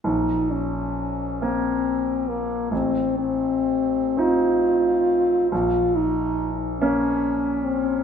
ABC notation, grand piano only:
X:1
M:6/8
L:1/8
Q:3/8=46
K:Bbm
V:1 name="Grand piano"
B,,,3 B,3 | =A,,,3 [CE]3 | B,,,3 [B,D]3 |]